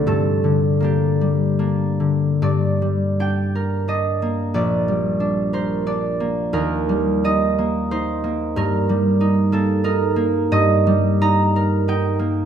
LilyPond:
<<
  \new Staff \with { instrumentName = "Harp" } { \time 3/4 \key g \minor \tempo 4 = 90 a'4 g'2 | d''4 g''4 ees''4 | d''4. c''8 d''4 | bes'4 ees''4 c''4 |
bes'4. a'8 bes'4 | \key ees \lydian ees''4 bes''4 g''4 | }
  \new Staff \with { instrumentName = "Harp" } { \time 3/4 \key g \minor <g, d'>8 d8 <bes d'>8 g8 <bes d'>8 d8 | g,8 g8 d'8 bes'8 d'8 bes8 | bes,,8 g8 d'8 bes'8 d'8 bes8 | ees,8 g8 ees'8 bes8 ees'8 bes8 |
g,8 g8 ees'8 bes8 ees'8 bes8 | \key ees \lydian g,8 g8 ees'8 bes'8 ees'8 bes8 | }
>>